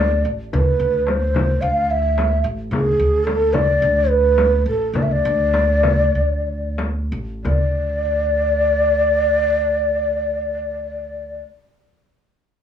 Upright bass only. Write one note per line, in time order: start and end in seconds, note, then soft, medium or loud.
0.00 0.21 D2 medium
0.25 0.51 A1 medium
0.53 0.79 D2 medium
0.80 1.58 D2 medium
1.62 2.40 D2 medium
2.44 2.70 A1 medium
2.71 2.97 D2 medium
2.99 3.78 D2 medium
3.82 4.63 D2 medium
4.66 4.93 A1 medium
4.93 5.22 D2 medium
5.25 6.12 D2 medium
6.15 7.08 D2 medium
7.12 7.44 A1 medium
7.45 11.40 D2 medium